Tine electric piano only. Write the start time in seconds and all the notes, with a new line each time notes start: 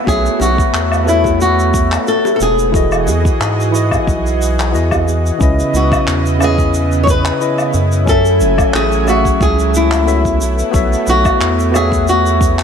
0.05 A3 B3 F#4 C#5
0.10 E5
1.04 B3 F#4 A4 C#5
1.09 E5
2.71 E3 E4 F#4 G#4
2.76 D#5
3.71 E3 E4 F#4 G#4
3.76 D#5
4.73 E3 E4 F#4 G#4 D#5
5.38 C#3 C#4 E4 B4
5.43 D#5
6.38 C#3 C#4 E4
6.42 B4 D#5
7.40 C#3 C#4 E4 B4 D#5
8.05 F#3 C#4 A4 G#5
8.10 E5
9.04 F#3 C#4 G#4
9.09 A3 E5
10.06 B3 F#4 A4 C#5 E5
10.71 B3 F#4 A4 C#5
10.76 E5
11.71 A3 B3 F#4 C#5
11.76 E5